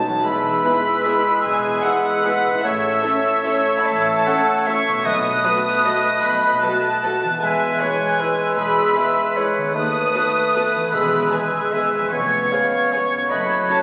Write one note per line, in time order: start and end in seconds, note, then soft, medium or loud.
0.00 0.26 B2 medium
0.00 0.25 D#4 soft
0.00 0.25 F#4 soft
0.00 2.65 B4 medium
0.00 0.21 A5 medium
0.04 2.56 E2 medium
0.04 0.14 F#3 medium
0.04 0.09 B3 soft
0.10 2.58 B3 soft
0.14 2.54 E4 soft
0.19 2.63 G#4 soft
0.24 0.57 E1 medium
0.24 0.57 E2 medium
0.24 2.59 G#3 medium
0.24 2.60 B4 medium
0.24 1.44 B5 medium
0.24 2.60 E6 medium
0.63 0.79 G#3 medium
0.63 0.72 B3 medium
0.63 0.79 E4 medium
0.63 0.72 E4 medium
0.63 0.72 G#4 medium
0.63 1.02 B4 medium
0.63 0.72 B4 medium
1.05 1.20 G#3 soft
1.05 1.13 B3 medium
1.05 1.14 E4 medium
1.05 1.20 E4 soft
1.05 1.14 G#4 medium
1.05 2.25 G#4 medium
1.05 1.14 B4 soft
1.44 1.77 E1 medium
1.44 1.76 E2 medium
1.44 1.83 G#5 medium
1.83 1.98 G#3 medium
1.83 1.92 B3 medium
1.83 1.98 E4 medium
1.83 1.92 E4 soft
1.83 1.92 G#4 medium
1.83 1.92 B4 medium
1.83 2.64 F#5 medium
2.24 2.39 G#3 medium
2.24 2.33 B3 medium
2.24 2.33 E4 medium
2.24 2.39 E4 soft
2.24 2.33 G#4 medium
2.24 2.63 B4 medium
2.24 2.33 B4 medium
2.46 4.98 A2 medium
2.50 5.01 C#4 soft
2.55 5.03 E4 soft
2.59 5.00 A4 soft
2.63 2.96 A1 medium
2.63 2.96 A2 medium
2.63 5.02 A3 medium
2.63 3.04 C#5 medium
2.63 5.07 C#5 medium
2.63 3.79 E5 medium
2.63 4.80 E6 medium
3.03 3.11 A3 medium
3.03 3.18 A3 medium
3.03 3.18 C#4 medium
3.03 3.11 E4 soft
3.03 3.45 A4 medium
3.03 3.11 A4 medium
3.03 3.11 C#5 medium
3.44 3.53 A3 medium
3.44 3.61 A3 soft
3.44 3.61 C#4 soft
3.44 3.52 E4 medium
3.44 3.53 A4 medium
3.44 3.88 C#5 medium
3.44 3.53 C#5 medium
3.79 3.86 B5 medium
3.85 4.19 A1 medium
3.85 4.19 A2 medium
3.85 4.25 E5 medium
3.85 4.66 A5 medium
4.26 4.41 A3 medium
4.26 4.35 A3 medium
4.26 4.41 C#4 medium
4.26 4.35 E4 medium
4.26 4.35 A4 medium
4.26 4.34 C#5 medium
4.26 4.68 F#5 medium
4.66 4.75 A3 medium
4.66 4.82 A3 soft
4.66 4.82 C#4 soft
4.66 4.74 E4 soft
4.66 4.74 A4 medium
4.66 4.75 C#5 medium
4.66 5.07 E5 medium
4.66 5.05 C#6 medium
4.88 7.34 B2 medium
4.92 7.27 B3 soft
4.97 7.38 F#4 soft
5.01 5.38 B1 medium
5.01 5.38 B2 medium
5.01 7.11 A3 medium
5.01 7.41 A4 soft
5.06 5.61 B2 medium
5.06 7.15 B4 medium
5.06 5.47 D#5 medium
5.06 6.21 D#6 medium
5.06 8.17 F#6 medium
5.44 5.53 F#3 medium
5.44 5.61 A3 medium
5.44 5.53 F#4 medium
5.44 5.60 F#4 medium
5.44 5.52 A4 medium
5.44 5.52 B4 soft
5.44 5.87 B4 medium
5.85 5.94 F#3 medium
5.85 6.00 A3 medium
5.85 5.94 F#4 soft
5.85 6.00 F#4 medium
5.85 5.93 A4 medium
5.85 5.93 B4 medium
5.85 7.15 D#5 medium
6.23 6.55 B1 medium
6.23 6.56 B2 medium
6.23 6.62 B5 medium
6.62 6.71 F#3 medium
6.62 6.78 A3 medium
6.62 6.71 F#4 medium
6.62 6.78 F#4 medium
6.62 6.71 A4 medium
6.62 6.71 B4 medium
6.62 7.39 A5 medium
7.03 7.11 F#3 medium
7.03 7.17 A3 medium
7.03 7.12 F#4 medium
7.03 7.18 F#4 medium
7.03 7.11 A4 medium
7.03 7.11 B4 medium
7.24 9.68 E3 medium
7.28 9.60 B3 soft
7.33 9.72 G#4 soft
7.37 7.73 E1 medium
7.37 9.71 G#3 medium
7.37 9.69 B4 medium
7.37 9.71 B4 medium
7.41 7.73 E2 medium
7.41 7.82 E5 medium
7.41 8.58 G#5 medium
7.79 7.95 G#3 medium
7.79 7.89 G#3 soft
7.79 7.89 E4 medium
7.79 7.87 G#4 medium
7.79 7.87 B4 soft
7.79 7.95 B4 medium
7.79 8.22 C#5 medium
8.19 8.28 G#3 medium
8.19 8.34 G#3 soft
8.19 8.28 E4 medium
8.19 8.27 G#4 medium
8.19 8.27 B4 medium
8.19 8.58 B4 medium
8.19 8.34 B4 soft
8.19 9.50 E6 medium
8.57 8.89 E1 medium
8.57 8.89 E2 medium
8.57 8.98 G#4 medium
8.57 9.35 B5 medium
8.96 9.04 G#3 medium
8.96 9.11 G#3 medium
8.96 9.04 E4 medium
8.96 9.04 G#4 medium
8.96 9.04 B4 medium
8.96 9.11 B4 medium
8.96 9.38 E5 medium
9.37 9.45 G#3 soft
9.37 9.51 G#3 medium
9.37 9.45 E4 medium
9.37 9.45 G#4 soft
9.37 9.51 B4 soft
9.37 9.46 B4 medium
9.37 9.76 C#5 medium
9.57 10.85 D#3 medium
9.62 10.79 B3 soft
9.66 10.90 A4 soft
9.70 10.88 B4 soft
9.75 10.07 D#2 medium
9.75 10.89 A3 medium
9.75 10.94 B4 medium
9.75 12.08 B4 medium
9.75 10.89 D#6 medium
9.75 10.89 F#6 medium
10.14 10.30 A3 medium
10.14 10.22 B3 medium
10.14 10.22 F#4 medium
10.14 10.23 A4 medium
10.14 10.23 B4 medium
10.14 10.30 B4 medium
10.55 10.69 A3 soft
10.55 10.63 B3 soft
10.55 10.63 F#4 medium
10.55 10.64 A4 soft
10.55 10.69 B4 soft
10.55 10.63 B4 medium
10.75 12.05 E3 medium
10.80 13.25 B3 soft
10.84 12.02 G#4 soft
10.89 11.25 E1 medium
10.89 11.25 E2 medium
10.89 12.10 G#3 medium
10.89 12.07 B4 soft
10.89 11.31 B5 medium
10.89 12.09 E6 medium
10.93 11.48 E2 medium
10.93 11.74 G#4 medium
11.32 11.47 G#3 medium
11.32 11.40 B3 soft
11.32 11.40 G#4 soft
11.32 11.40 B4 soft
11.32 11.47 B4 soft
11.32 12.12 G#5 medium
11.72 11.88 G#3 soft
11.72 11.81 B3 soft
11.72 11.81 G#4 soft
11.72 11.82 G#4 soft
11.72 11.82 B4 soft
11.72 11.88 B4 soft
11.72 12.12 E5 medium
11.94 13.23 F2 soft
11.99 13.16 C#4 soft
12.04 13.27 G#4 soft
12.08 13.30 B4 soft
12.12 12.45 F1 medium
12.12 12.45 F2 medium
12.12 13.13 B3 medium
12.12 13.82 C#5 medium
12.12 12.54 C#5 medium
12.12 13.28 C#6 medium
12.12 13.28 G#6 medium
12.51 12.66 G#3 soft
12.51 12.60 B3 soft
12.51 12.60 G#4 soft
12.51 12.61 G#4 soft
12.51 12.66 B4 medium
12.51 12.61 C#5 soft
12.51 12.94 F5 medium
12.92 13.06 G#3 soft
12.92 13.01 B3 soft
12.92 13.00 G#4 soft
12.92 13.01 G#4 soft
12.92 13.06 B4 soft
12.92 13.32 C#5 medium
12.92 13.01 C#5 soft
13.13 13.82 F#2 soft
13.17 13.82 C#4 soft
13.22 13.82 F#4 soft
13.27 13.62 F#1 medium
13.27 13.62 F#2 soft
13.27 13.82 A3 soft
13.27 13.82 A4 soft
13.31 13.71 D#5 medium
13.31 13.68 B5 medium
13.31 13.82 F#6 medium
13.69 13.82 F#3 soft
13.69 13.77 C#4 soft
13.69 13.77 F#4 soft
13.69 13.78 A4 soft
13.69 13.82 A4 soft
13.69 13.82 C#5 medium
13.69 13.78 C#5 soft
13.69 13.82 A5 medium